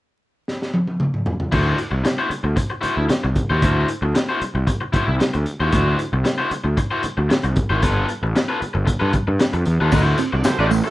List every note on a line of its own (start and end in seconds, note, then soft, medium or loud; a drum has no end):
0.48 snare soft
0.62 snare soft
0.74 high tom medium
0.87 high tom medium
1.00 mid tom medium
1.14 mid tom medium
1.26 floor tom loud
1.40 floor tom medium
1.52 1.74 D2 loud
1.52 1.76 E4 medium
1.52 1.77 F#4 medium
1.52 1.77 C5 medium
1.52 kick loud
1.52 crash medium
1.78 closed hi-hat medium
1.91 2.02 C2 medium
1.91 muted overdriven electric guitar stroke soft
2.04 muted overdriven electric guitar stroke soft
2.04 snare medium
2.04 closed hi-hat medium
2.18 2.29 E4 medium
2.18 2.29 F#4 medium
2.18 2.29 C5 medium
2.30 muted overdriven electric guitar stroke soft
2.30 muted picked electric bass stroke soft
2.30 closed hi-hat medium
2.44 2.54 D2 medium
2.44 muted overdriven electric guitar stroke soft
2.56 muted overdriven electric guitar stroke soft
2.56 kick medium
2.56 closed hi-hat medium
2.70 muted overdriven electric guitar stroke soft
2.81 3.04 E4 medium
2.81 2.96 F#4 medium
2.81 2.96 C5 medium
2.81 muted picked electric bass stroke soft
2.81 closed hi-hat medium
2.97 3.07 D2 medium
2.97 muted overdriven electric guitar stroke soft
3.08 muted overdriven electric guitar stroke soft
3.08 muted picked electric bass stroke soft
3.08 snare medium
3.08 closed hi-hat medium
3.24 3.34 C2 medium
3.24 muted overdriven electric guitar stroke soft
3.35 kick medium
3.35 closed hi-hat medium
3.50 3.62 D#2 medium
3.50 3.61 E4 medium
3.50 3.62 F#4 medium
3.50 3.62 C5 medium
3.62 3.84 D2 loud
3.62 3.87 E4 medium
3.62 3.87 F#4 medium
3.62 3.87 C5 medium
3.62 kick loud
3.62 closed hi-hat medium
3.88 closed hi-hat medium
4.02 4.12 D2 medium
4.02 muted overdriven electric guitar stroke soft
4.15 muted overdriven electric guitar stroke soft
4.15 snare medium
4.15 closed hi-hat medium
4.29 4.40 E4 medium
4.29 4.41 F#4 medium
4.29 4.41 C5 medium
4.42 muted picked electric bass stroke soft
4.42 muted overdriven electric guitar stroke soft
4.42 closed hi-hat medium
4.55 4.65 C2 medium
4.55 muted overdriven electric guitar stroke soft
4.67 muted overdriven electric guitar stroke soft
4.67 kick medium
4.67 closed hi-hat medium
4.81 muted overdriven electric guitar stroke soft
4.93 5.14 E4 medium
4.93 5.06 F#4 medium
4.93 5.06 C5 medium
4.93 muted picked electric bass stroke soft
4.93 kick medium
4.93 closed hi-hat medium
5.07 5.18 C2 medium
5.07 muted overdriven electric guitar stroke soft
5.19 muted overdriven electric guitar stroke soft
5.19 muted picked electric bass stroke soft
5.19 snare loud
5.19 closed hi-hat medium
5.34 5.44 D2 medium
5.34 muted overdriven electric guitar stroke soft
5.34 closed hi-hat soft
5.46 closed hi-hat medium
5.60 5.70 D#2 medium
5.60 5.71 E4 medium
5.60 5.72 F#4 medium
5.60 5.73 C5 medium
5.72 5.94 D2 loud
5.72 5.97 E4 medium
5.72 5.97 F#4 medium
5.72 5.97 C5 medium
5.72 kick loud
5.72 closed hi-hat medium
5.99 closed hi-hat medium
6.13 6.23 C2 medium
6.13 muted overdriven electric guitar stroke soft
6.24 muted overdriven electric guitar stroke soft
6.24 snare medium
6.24 closed hi-hat medium
6.38 6.50 E4 medium
6.38 6.51 F#4 medium
6.38 6.51 C5 medium
6.51 muted picked electric bass stroke soft
6.51 muted overdriven electric guitar stroke soft
6.51 closed hi-hat medium
6.64 6.75 D2 medium
6.64 muted overdriven electric guitar stroke soft
6.77 muted overdriven electric guitar stroke soft
6.77 kick medium
6.77 closed hi-hat medium
6.91 7.02 E4 medium
6.91 7.03 F#4 medium
6.91 7.03 C5 medium
7.03 muted overdriven electric guitar stroke soft
7.03 muted picked electric bass stroke soft
7.03 closed hi-hat medium
7.17 7.28 D2 medium
7.17 muted overdriven electric guitar stroke soft
7.29 muted overdriven electric guitar stroke soft
7.29 muted picked electric bass stroke soft
7.29 snare loud
7.29 closed hi-hat medium
7.44 7.54 C2 medium
7.44 muted overdriven electric guitar stroke medium
7.44 closed hi-hat soft
7.56 kick loud
7.56 closed hi-hat medium
7.70 7.83 G#1 medium
7.70 7.82 E4 medium
7.70 7.82 F#4 medium
7.70 7.83 C5 medium
7.82 8.04 G1 loud
7.82 8.07 F4 medium
7.82 8.07 A4 medium
7.82 8.07 B4 medium
7.82 kick loud
7.82 closed hi-hat medium
8.09 closed hi-hat medium
8.23 8.33 A1 medium
8.23 muted overdriven electric guitar stroke soft
8.36 muted overdriven electric guitar stroke soft
8.36 snare medium
8.36 closed hi-hat medium
8.49 8.59 F4 medium
8.49 8.59 A4 medium
8.49 8.60 B4 medium
8.60 muted overdriven electric guitar stroke soft
8.60 muted picked electric bass stroke soft
8.60 closed hi-hat medium
8.74 8.85 G1 medium
8.74 muted overdriven electric guitar stroke soft
8.85 muted overdriven electric guitar stroke soft
8.85 kick medium
8.85 closed hi-hat medium
9.00 9.11 G2 loud
9.00 9.12 F4 medium
9.00 9.12 A4 medium
9.00 9.13 B4 medium
9.13 muted overdriven electric guitar stroke soft
9.13 kick loud
9.13 closed hi-hat medium
9.27 9.38 G2 medium
9.27 muted overdriven electric guitar stroke soft
9.39 muted overdriven electric guitar stroke soft
9.39 snare loud
9.39 closed hi-hat medium
9.53 9.64 F2 medium
9.53 muted overdriven electric guitar stroke medium
9.53 closed hi-hat soft
9.65 9.78 E2 medium
9.65 closed hi-hat medium
9.81 9.90 D#2 medium
9.81 9.92 F4 medium
9.81 9.92 A4 medium
9.81 9.93 B4 medium
9.92 10.14 D2 loud
9.92 10.03 D4 medium
9.92 10.16 E4 medium
9.92 10.17 F#4 medium
9.92 10.17 C5 medium
9.92 kick loud
9.92 crash medium
9.92 tambourine medium
9.92 muted conga soft
10.06 muted clean electric guitar stroke soft
10.18 10.30 C4 medium
10.18 closed hi-hat medium
10.18 tambourine soft
10.33 10.43 C2 medium
10.33 10.43 A3 medium
10.33 10.43 D4 medium
10.33 10.43 F#4 medium
10.33 10.43 D5 medium
10.33 muted overdriven electric guitar stroke soft
10.44 10.56 A3 medium
10.44 10.56 C4 medium
10.44 10.56 F#4 medium
10.44 10.56 C5 loud
10.44 muted overdriven electric guitar stroke soft
10.44 muted picked electric bass stroke soft
10.44 snare medium
10.44 clap medium
10.44 closed hi-hat medium
10.44 tambourine medium
10.44 high conga medium
10.59 10.80 A1 medium
10.59 10.66 A3 medium
10.59 10.66 D4 medium
10.59 10.69 E4 medium
10.59 10.67 F#4 medium
10.59 10.70 F#4 medium
10.59 10.70 C5 medium
10.59 10.66 D5 medium
10.70 10.82 A3 medium
10.70 muted overdriven electric guitar stroke soft
10.70 open hi-hat medium
10.70 tambourine medium
10.84 10.90 F#3 medium
10.84 10.90 A3 medium
10.84 10.90 E4 medium
10.84 10.90 A4 medium
10.84 muted overdriven electric guitar stroke soft